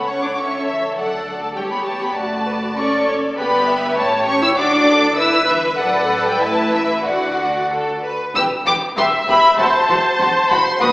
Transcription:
Already playing: C#2 A4 C#5 F#5
0.07 C#4 C#6
0.22 D4 D6
0.37 C#4 A4 E5 C#6
0.67 E3 E5
0.97 D2 F#3 A4 D5 F#5
1.42 A3 A5
1.56 E2 G3 G4 C#5 G5
1.71 B3 B5
1.85 A3 A5
2.01 B3 B5
2.16 F#1 A3 F#4 D5 A5
2.47 B4
2.77 C#4 A4 D5 C#6
3.08 C#5
3.37 G1 B3 G4 B4 D5 B5
3.67 E5
3.97 A1 A3 G4 C#5 A5
4.26 C#4 C#6
4.41 E4 E6
4.57 D2 D4 F#4 D5 D6
4.87 A4
5.17 G1 E4 B4 E6
5.48 E3 E5
5.78 A1 F#3 A4 D5 F#5
6.25 G3 G5
6.41 A1 A3 E4 E5 A5
6.72 E3 E5
7.04 D2 D3 F#4 D5 F#5
7.70 A4
8.02 B4
8.35 E1 E2 G4 B4 E6
8.66 E1 E2 G4 B4 D6
8.97 E1 E2 G4 B4 E5 C6
9.28 E1 E2 G4 B4 B5
9.58 E1 E2 F#4 C5 A5
9.89 E1 E2 F#4 C5
10.20 E1 E2 F#4 C5
10.50 E1 E2 F#4 C5 B5
10.67 C6
10.80 D#2 F#4 B4 D#6

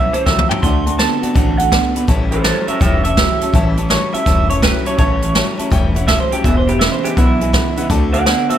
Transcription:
Already playing: B1 A2 E3 G3 C#4 E4 E5
0.13 A2 E3 G3 C#4 E4 C5 C#5 E5 A5, closed hi-hat
0.25 C#2 A2 E3 F#3 G3 C#4 E4 C#5 E5 G5, kick, snare
0.39 mid tom
0.49 A2 F#3 G3 C#4 E4 C#5 E5 G5 A5, floor tom
0.62 D2 D3 A3 C4 F#4 D5 F#5 A5 C6, kick, closed hi-hat
0.86 D3 A3 C4 F#4 D5 F#5 A5, closed hi-hat
0.98 D3 A3 B3 C4 F#4 D5 F#5 A5 C6, snare, closed hi-hat
1.22 D3 A3 B3 C4 F#4 D5 F#5 A5, muted upright bass stroke, closed hi-hat
1.34 A1 D3 A3 C4 F#4 D5 F#5 A5, kick, closed hi-hat
1.58 D3 A3 C4 F#4 D5 F#5 A5, closed hi-hat
1.71 D3 A3 B3 C4 F#4 D5 F#5 A5, kick, snare, closed hi-hat
1.94 D3 A3 B3 C4 F#4 D5 F#5 B5, muted upright bass stroke, closed hi-hat
2.07 A1 A2 E3 G3 C#4 E4 C#5 E5 A5, kick, closed hi-hat
2.31 A2 E3 G3 C#4 E4 A4 C5 C#5 E5 B5, closed hi-hat
2.43 A2 E3 F#3 G3 C#4 E4 A4 C5 C#5 E5 A5, snare, closed hi-hat
2.67 A2 F#3 G3 C#4 E4 C#5 E5 A5, muted upright bass stroke, closed hi-hat
2.80 E1 A2 E3 G3 C#4 E4 C#5 E5 G5, kick, closed hi-hat
3.03 A2 E3 G3 C#4 E4 C#5 E5 A5, closed hi-hat
3.16 A2 E3 F#3 G3 C#4 E4 C#5 E5 G5, kick, snare, closed hi-hat
3.39 A2 F#3 G3 C#4 E4 C#5 E5 A5, muted upright bass stroke, closed hi-hat
3.53 A1 A2 E3 G3 C#4 E4 C#5 E5 A5, kick, closed hi-hat
3.76 A2 E3 G3 C#4 E4 C#5 E5 A5, closed hi-hat
3.89 A2 E3 F#3 G3 C#4 E4 C#5 E5 A5, snare, closed hi-hat
4.12 A2 F#3 G3 C#4 E4 C#5 E5 A5, muted upright bass stroke, closed hi-hat
4.25 E1 A2 E3 G3 C#4 E4 C#5 E5 A5, kick, snare, closed hi-hat
4.49 A2 E3 G3 C#4 E4 C#5 E5 A5, closed hi-hat
4.62 A2 E3 F#3 G3 C#4 E4 B4 C#5 E5 G5, kick, snare, closed hi-hat
4.85 A2 F#3 G3 C#4 E4 C#5 E5 A5, muted upright bass stroke, closed hi-hat
4.98 A1 A2 E3 G3 C#4 E4 C#5 E5 A5, kick, closed hi-hat
5.21 A2 E3 G3 C#4 E4 C#5 E5 A5, closed hi-hat
5.34 A2 E3 F#3 G3 C#4 E4 C#5 E5 A5, snare, closed hi-hat
5.57 A2 F#3 G3 C#4 E4 C#5 E5 A5, muted upright bass stroke, closed hi-hat
5.70 E1 A2 E3 G3 C#4 E4 C#5 E5 G5, kick, closed hi-hat
5.95 A2 E3 G3 C#4 E4 C#5 E5 F#5, closed hi-hat
6.07 A2 E3 F#3 G3 C#4 E4 C#5 E5 A5, kick, snare, closed hi-hat
6.20 C5
6.30 A2 F#3 G3 C#4 E4 G4 C#5 E5 A5, muted upright bass stroke, closed hi-hat
6.44 E1 E2 B2 E3 G#3 D4 E4 B4 E5 G#5, kick, closed hi-hat
6.57 C5
6.67 E2 B2 E3 G#3 D4 E4 G4 B4 E5 B5, closed hi-hat
6.79 E2 C#3 E3 G#3 D4 E4 B4 E5 B5, snare, closed hi-hat
6.92 C5
7.03 E2 C#3 E3 G#3 D4 E4 G4 B4 E5 G#5, muted upright bass stroke, closed hi-hat
7.16 B1 E2 B2 E3 G#3 D4 E4 B4 E5 F#5, kick, closed hi-hat
7.40 E2 B2 E3 G#3 D4 E4 B4 E5 G#5, closed hi-hat
7.52 E2 C#3 E3 G#3 D4 E4 B4 E5 F#5, kick, snare, closed hi-hat
7.76 E2 C#3 E3 G#3 D4 E4 B4 E5 F#5, muted upright bass stroke, closed hi-hat
7.90 D2 D3 A3 C4 F#4 D5 F#5 A5, kick, closed hi-hat
8.13 D3 A3 C4 F#4 D5 F#5 A5, closed hi-hat
8.26 D3 A3 B3 C4 F#4 D5 F#5 A5, snare, closed hi-hat
8.49 D3 B3 C4 F#4 C5 D5 E5 F#5 A5, muted upright bass stroke, closed hi-hat
8.53 A3

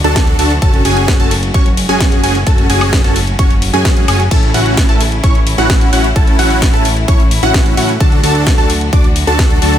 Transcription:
Already playing: B2 D3 F#3 D4 F#4
0.04 D2 D4 F#4 A4 A5, closed hi-hat
0.16 kick, snare, closed hi-hat
0.27 closed hi-hat
0.39 D2 D4 F#4 A4 A5, open hi-hat, ride
0.50 closed hi-hat
0.62 F#1 A2 C#3 C#4 F#4 A4 A5, kick, closed hi-hat
0.74 closed hi-hat
0.85 F#1 C#4 F#4 G#4 G#5, open hi-hat, ride
0.97 closed hi-hat
1.08 kick, snare, closed hi-hat
1.20 F#1 C#4 F#4 A4 A5, closed hi-hat
1.31 open hi-hat, ride
1.43 closed hi-hat
1.54 F#1 C#4 F#4 C#5 C#6, kick, closed hi-hat
1.66 closed hi-hat
1.77 open hi-hat, ride
1.89 F#1 C#4 F#4 G#4 G#5, closed hi-hat
2.00 kick, snare, closed hi-hat
2.12 closed hi-hat
2.24 F#1 C#4 F#4 G#4 G#5, open hi-hat, ride
2.35 closed hi-hat
2.47 F#1 C#4 F#4 A4 A5, kick, closed hi-hat
2.58 closed hi-hat
2.70 F#1 C#4 F#4 G#4 G#5, open hi-hat, ride
2.81 open hi-hat, high woodblock
2.93 kick, snare, closed hi-hat
3.04 F#1 C#4 F#4 A4 A5, snare, closed hi-hat
3.16 open hi-hat, ride
3.27 closed hi-hat
3.39 F#1 C#4 F#4 C#5 C#6, kick, closed hi-hat
3.51 closed hi-hat
3.62 open hi-hat, ride
3.74 F#2 C#4 F#4 G#4 G#5, closed hi-hat
3.85 kick, snare, closed hi-hat
3.97 closed hi-hat
4.08 F#1 C#4 F#4 G#4 G#5, open hi-hat, ride, high woodblock
4.20 closed hi-hat
4.31 A1 E3 C#4 E4 A4 A5, kick, closed hi-hat, crash
4.43 closed hi-hat
4.54 A1 C#4 E4 F#4 F#5, open hi-hat, ride
4.66 closed hi-hat
4.77 kick, snare, closed hi-hat
4.89 A1 C#4 E4 A4 A5, closed hi-hat
5.01 open hi-hat, ride
5.12 closed hi-hat
5.24 A1 C#4 E4 C#5 C#6, kick, closed hi-hat
5.35 closed hi-hat
5.47 open hi-hat, ride
5.58 A1 C#4 E4 F#4 F#5, closed hi-hat
5.70 kick, snare, closed hi-hat
5.81 closed hi-hat
5.93 A1 C#4 E4 F#4 F#5, open hi-hat, ride
6.04 closed hi-hat
6.16 A1 C#4 E4 A4 A5, kick, closed hi-hat
6.27 closed hi-hat
6.39 A1 C#4 E4 F#4 F#5, open hi-hat, ride
6.51 open hi-hat
6.62 kick, snare, closed hi-hat
6.74 A1 C#4 E4 A4 A5, closed hi-hat
6.85 open hi-hat, ride
6.97 closed hi-hat
7.08 A1 C#4 E4 C#5 C#6, kick, closed hi-hat
7.20 closed hi-hat
7.31 open hi-hat, ride
7.43 A1 C#4 E4 F#4 F#5, closed hi-hat
7.54 kick, snare, closed hi-hat
7.66 closed hi-hat
7.77 A2 C#4 E4 F#4 F#5, open hi-hat, ride
7.89 closed hi-hat
8.00 D2 D3 F#3 D4 F#4 A4 A5, kick, closed hi-hat
8.12 closed hi-hat
8.24 D2 D4 F#4 A4 A5, open hi-hat, ride
8.35 closed hi-hat
8.47 kick, snare, closed hi-hat
8.58 D2 D4 F#4 A4 A5, closed hi-hat
8.70 open hi-hat, ride
8.81 closed hi-hat
8.93 D2 D4 F#4 D5 D6, kick, closed hi-hat
9.04 closed hi-hat
9.16 open hi-hat, ride
9.27 D2 D4 F#4 A4 A5, closed hi-hat
9.39 kick, snare, closed hi-hat
9.50 closed hi-hat
9.62 D2 D4 F#4 A4 A5, open hi-hat, ride
9.74 closed hi-hat

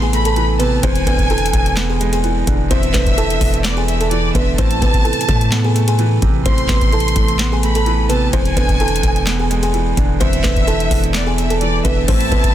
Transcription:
Already playing: A1 A2 C3 E3 A3 B3
0.02 G#4 G#5
0.13 A3 B5, closed hi-hat
0.25 A4 A5, closed hi-hat
0.36 E3, closed hi-hat
0.59 C3 B3 B4 A5, closed hi-hat
0.83 E1 E2 C4 C5 G#5, kick, closed hi-hat
0.95 closed hi-hat
1.07 E1 D3 B3 B4, kick, closed hi-hat
1.19 kick, closed hi-hat
1.30 E3 A4 A5, closed hi-hat
1.38 closed hi-hat
1.46 closed hi-hat
1.53 E1, kick, closed hi-hat
1.66 closed hi-hat
1.77 B3, snare, clap, closed hi-hat
1.90 G#4 G#5
2.00 G#3, closed hi-hat
2.13 G#4 G#5, closed hi-hat
2.24 E3, closed hi-hat
2.47 E1 D3, kick, closed hi-hat
2.71 E1 E2 C4 C5 E5, kick, closed hi-hat
2.83 closed hi-hat
2.94 E1 D3 B3 B4, kick, snare, clap, closed hi-hat
3.06 kick, closed hi-hat
3.18 E3 A4 A5, closed hi-hat
3.30 closed hi-hat
3.41 E1, kick, open hi-hat
3.54 closed hi-hat
3.64 B3 D5, snare, clap, closed hi-hat
3.77 G#4 G#5
3.88 E5, closed hi-hat
4.00 A4 A5, closed hi-hat
4.11 E3 D5, closed hi-hat
4.35 E1 D3 B3 B4 E5, kick, closed hi-hat
4.58 A1 A2 C4 C5 A5, kick, closed hi-hat
4.71 closed hi-hat
4.81 A1 C3 B3 B4, kick, closed hi-hat
4.94 kick, closed hi-hat
5.05 E3 A4 A5, closed hi-hat
5.13 closed hi-hat
5.21 closed hi-hat
5.28 A2 A3, kick, closed hi-hat
5.41 closed hi-hat
5.52 B3, snare, clap, closed hi-hat
5.65 G#4 G#5
5.75 A3, closed hi-hat
5.88 G#4 G#5, closed hi-hat
5.99 E3, closed hi-hat
6.22 A1 C3, kick, closed hi-hat
6.45 A1 A2 C4 C5 C6, kick, closed hi-hat
6.58 closed hi-hat
6.69 A1 C3 B3 B4, kick, snare, clap, closed hi-hat
6.81 kick, closed hi-hat
6.92 E3 A4 A5, closed hi-hat
7.00 closed hi-hat
7.08 closed hi-hat
7.16 A1 A3, kick, closed hi-hat
7.28 closed hi-hat
7.39 B3, snare, clap, closed hi-hat
7.52 G#4 G#5
7.63 A3 B5, closed hi-hat
7.75 A4 A5, closed hi-hat
7.86 E3, closed hi-hat
8.09 C3 B3 B4 A5, closed hi-hat
8.33 E1 E2 C4 C5 G#5, kick, closed hi-hat
8.45 closed hi-hat
8.57 E1 D3 B3 B4, kick, closed hi-hat
8.69 kick, closed hi-hat
8.80 E3 A4 A5, closed hi-hat
8.88 closed hi-hat
8.96 closed hi-hat
9.03 E1, kick, closed hi-hat
9.16 closed hi-hat
9.27 B3, snare, clap, closed hi-hat
9.39 G#4 G#5
9.50 G#3, closed hi-hat
9.63 G#4 G#5, closed hi-hat
9.74 E3, closed hi-hat
9.97 E1 D3, kick, closed hi-hat
10.20 E1 E2 C4 C5 E5, kick, closed hi-hat
10.33 closed hi-hat
10.43 E1 D3 B3 B4, kick, snare, clap, closed hi-hat
10.56 kick, closed hi-hat
10.67 E3 A4 A5, closed hi-hat
10.80 closed hi-hat
10.91 E1, kick, open hi-hat
11.04 closed hi-hat
11.14 B3 D5, snare, clap, closed hi-hat
11.27 G#4 G#5
11.38 E5, closed hi-hat
11.50 A4 A5, closed hi-hat
11.61 E3 D5, closed hi-hat
11.85 E1 D3 B3 B4 E5, kick, closed hi-hat
12.08 A1 A2 A3 C4 E4 C5 E5 A5, kick, closed hi-hat, crash
12.21 closed hi-hat
12.32 A1 C3 B3 B4, kick, closed hi-hat
12.44 kick, closed hi-hat

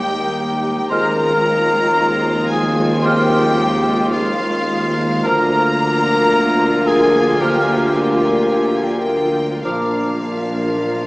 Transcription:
Already playing: D#2 D#3 G3 A#3 D#4 G4 D#5 G5 D#6
0.18 D#5
0.56 G4
0.90 D#2 D#3 F3 G#3 C4 F4 A#4 C5 A#5 F6
1.29 G#3
2.00 F5
2.36 G#4
2.51 G#4 G#5
2.71 C5
3.02 G#3 G4 C5 G5 F6
3.07 D#3
3.42 G#3
3.78 C5
4.12 F4 F5
4.51 G#4
4.90 C5
5.23 D2 D3 F3 A#3 F4 A#4 A#5 F6
5.63 A#3
5.99 A#4
6.35 F5
6.71 A#4
6.88 G#4 G#5
7.06 F4
7.40 D3 F3 G4 A#4 G5 F6
7.49 G#5
7.55 G5
7.62 G#5
7.70 G5
7.78 A#3 G#5
7.87 G5
7.95 G#5
8.02 G5
8.09 G#5
8.17 G5
8.26 G#5
8.34 G5
8.41 G#5
8.50 F5 G5
8.57 G#5
8.64 G5
8.75 G#5
8.83 G5
8.89 A#4 G#5
9.00 G5
9.27 F4
9.63 A#1 A#2 F3 A#3 D4 F4 A#4 F5 D6
10.43 A#4
10.80 D5

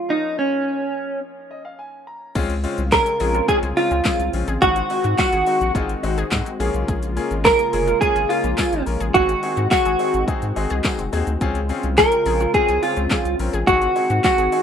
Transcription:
Already playing: F4
0.08 F3 A#3 C#4 D#4 F4
0.39 C#4
1.51 D#5
1.65 F5
1.79 G#5
2.07 A#5
2.35 C#2 G#3 C4 C#4 F4 G#4, kick, closed hi-hat, crash, shaker
2.50 closed hi-hat, shaker
2.64 G#3 C4 C#4 F4, open hi-hat, shaker
2.78 C2, closed hi-hat, shaker
2.92 G#3 C4 C#4 F4 G#4 A#4, kick, snare, clap, closed hi-hat, tambourine, shaker
3.06 C4, closed hi-hat, shaker
3.20 A#1 G#3 C4 C#4 F4 G#4, open hi-hat, shaker
3.34 F4, closed hi-hat, shaker
3.48 G#3 C4 C#4 F4 G#4, kick, closed hi-hat, shaker
3.63 C2 G#4, closed hi-hat, shaker
3.77 G#3 C4 C#4 F4, open hi-hat, shaker
3.91 C#2 C4, closed hi-hat, shaker
4.05 G#3 C4 C#4 F4 G#4, kick, snare, clap, closed hi-hat, tambourine, shaker
4.19 C2, closed hi-hat, shaker
4.33 A#1 G#3 C4 C#4 F4, open hi-hat, shaker
4.48 A1 G#4, closed hi-hat, shaker
4.62 G#1 D#3 G#3 C4 D#4 F#4, kick, closed hi-hat, shaker
4.76 C4, closed hi-hat, shaker
4.90 G#3 C4 D#4 F#4, open hi-hat, shaker
5.04 G#2 F#4, closed hi-hat, shaker
5.18 G#3 C4 D#4 F4 F#4, kick, snare, clap, closed hi-hat, tambourine, shaker
5.33 G#1 G#4, closed hi-hat, shaker
5.46 G#3 C4 D#4 F#4, open hi-hat, shaker
5.61 A#1, closed hi-hat, shaker
5.75 G#1 G#3 C4 D#4 F4 G#4, kick, closed hi-hat, shaker
5.89 closed hi-hat, shaker
6.03 G#1 G#3 C4 D#4 F#4, open hi-hat, shaker
6.18 G#4, closed hi-hat, shaker
6.31 G#2 G#3 C4 D#4 F#4, kick, snare, clap, closed hi-hat, tambourine, shaker
6.46 C4, closed hi-hat, shaker
6.60 A#1 C#3 A#3 C#4 F4 G#4, open hi-hat, shaker
6.74 B1, closed hi-hat, shaker
6.88 A#1 G#4, kick, closed hi-hat, shaker
7.03 closed hi-hat, shaker
7.16 A#3 C#4 F4 G#4, open hi-hat, shaker
7.31 G#1, closed hi-hat, shaker
7.45 A#3 C#4 F4 G#4 A#4, kick, snare, clap, closed hi-hat, tambourine, shaker
7.59 A#3, closed hi-hat, shaker
7.73 F1 A#3 C#4 F4 G#4, open hi-hat, shaker
7.87 F4, closed hi-hat, shaker
8.01 A#3 C#4 F4 G#4, kick, closed hi-hat, shaker
8.15 G#1 G#4, closed hi-hat, shaker
8.29 A#3 C#4 F4 G#4, open hi-hat, shaker
8.44 A#1 A#3, closed hi-hat, shaker
8.58 A#3 C#4 F4 G#4, kick, snare, clap, closed hi-hat, tambourine, shaker
8.72 G#1, closed hi-hat, shaker
8.86 A#1 A#3 C#4 F4 A#4, open hi-hat, shaker
9.00 A1 G#4, closed hi-hat, shaker
9.14 G#1 D#3 C4 D#4 F#4 G#4, kick, closed hi-hat, shaker
9.29 C4, closed hi-hat, shaker
9.43 C4 D#4 F#4 G#4, open hi-hat, shaker
9.57 G#2 F#4, closed hi-hat, shaker
9.71 C4 D#4 F#4 G#4, kick, snare, clap, closed hi-hat, tambourine, shaker
9.85 G#1 G#4, closed hi-hat, shaker
9.99 C4 D#4 F#4 G#4, open hi-hat, shaker
10.14 G#1, closed hi-hat, shaker
10.28 C4 D#4 F#4 G#4, kick, closed hi-hat, shaker
10.42 G#2, closed hi-hat, shaker
10.56 G#1 C4 D#4 F#4 G#4 D#5, open hi-hat, shaker
10.70 C2 G#4, closed hi-hat, shaker
10.84 C4 D#4 F#4 G#4 G#5, kick, snare, clap, closed hi-hat, tambourine, shaker
10.99 F1 C4, closed hi-hat, shaker
11.12 D#2 C4 D#4 F#4 G#4, open hi-hat, shaker
11.27 D2, closed hi-hat, shaker
11.41 C#2 C4 C#4 F4 G#4, kick, closed hi-hat, shaker
11.55 closed hi-hat, shaker
11.69 C4 C#4 F4 G#4, open hi-hat, shaker
11.83 C2, closed hi-hat, shaker
11.98 C4 C#4 F4 G#4 A#4, kick, snare, clap, closed hi-hat, tambourine, shaker
12.12 C4, closed hi-hat, shaker
12.26 A#1 C4 C#4 F4 G#4, open hi-hat, shaker
12.40 F4, closed hi-hat, shaker
12.54 C4 C#4 F4 G#4, kick, closed hi-hat, shaker
12.68 C2 G#4, closed hi-hat, shaker
12.83 C4 C#4 F4 G#4, open hi-hat, shaker
12.97 C#2 C4, closed hi-hat, shaker
13.11 C4 C#4 F4 G#4, kick, snare, clap, closed hi-hat, tambourine, shaker
13.25 C2, closed hi-hat, shaker
13.39 A#1 C4 C#4 F4 A#4, open hi-hat, shaker
13.53 A1 G#4, closed hi-hat, shaker
13.67 G#1 D#3 C4 D#4 F#4 G#4, kick, closed hi-hat, shaker
13.82 C4, closed hi-hat, shaker
13.95 C4 D#4 F#4 G#4, open hi-hat, shaker
14.10 G#2 F#4, closed hi-hat, shaker
14.24 C4 D#4 F#4 G#4, kick, snare, clap, closed hi-hat, tambourine, shaker
14.38 G#1 G#4, closed hi-hat, shaker
14.52 C4 D#4 F#4 G#4, open hi-hat, shaker

